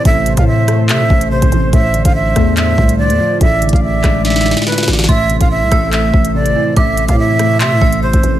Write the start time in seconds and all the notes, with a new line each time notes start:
Already playing: A2 C3 E3 A3 E4 A4 C5
0.05 A1 A2 E5, kick, closed hi-hat
0.26 C3, closed hi-hat
0.37 A2 F5, kick, closed hi-hat
0.47 E5
0.68 A3, cross-stick, closed hi-hat
0.89 C3 E5, clap, closed hi-hat
1.00 A2
1.10 A1 A2, kick
1.21 closed hi-hat
1.31 C3 C5
1.42 A1, kick, closed hi-hat
1.52 A1 E3, closed hi-hat
1.73 A1 A2 D4 F4 E5, kick, closed hi-hat
1.94 D3, closed hi-hat
2.05 A1 F5, kick, closed hi-hat
2.15 E5
2.36 E2 A3, kick, cross-stick, closed hi-hat
2.57 E5, clap, closed hi-hat
2.78 C2 A2, kick
2.89 closed hi-hat
2.99 D3 D5
3.10 E2, closed hi-hat
3.20 F3
3.41 A1 A2 E4 G#4 D5 E5, kick, closed hi-hat
3.62 D3, closed hi-hat
3.69 closed hi-hat
3.73 A1 F5, kick, closed hi-hat
3.83 E5
4.04 A1 G#3, kick, cross-stick, clap, closed hi-hat
4.25 E5, snare, closed hi-hat
4.30 snare
4.36 snare
4.41 snare
4.46 A2, snare
4.51 snare
4.57 snare, closed hi-hat
4.62 snare
4.66 D3 B4, snare
4.72 snare
4.78 snare, closed hi-hat
4.83 snare
4.88 A1 E3, snare, closed hi-hat
4.93 snare
4.99 snare, closed hi-hat
5.04 snare
5.09 A1 A2 A3 A4 C5 E5 C6, kick, closed hi-hat
5.30 C3, closed hi-hat
5.41 A1 F5, kick, closed hi-hat
5.51 E5
5.62 C2
5.72 A1 A3 E6, kick, cross-stick, closed hi-hat
5.92 E5, clap, closed hi-hat
6.14 A1 A2, kick
6.25 closed hi-hat
6.35 C3 D5
6.46 G#1, closed hi-hat
6.56 E3
6.77 A1 A2 E5 D6, kick, closed hi-hat
6.97 C3, closed hi-hat
7.08 A2 F5, kick, closed hi-hat
7.19 E5
7.39 A3, cross-stick, closed hi-hat
7.60 C3 E5 C6, clap, closed hi-hat
7.72 A2
7.81 A1 A2 E6, kick
7.93 closed hi-hat
8.03 C3 C5
8.13 A1, kick, closed hi-hat
8.23 A1 E3, closed hi-hat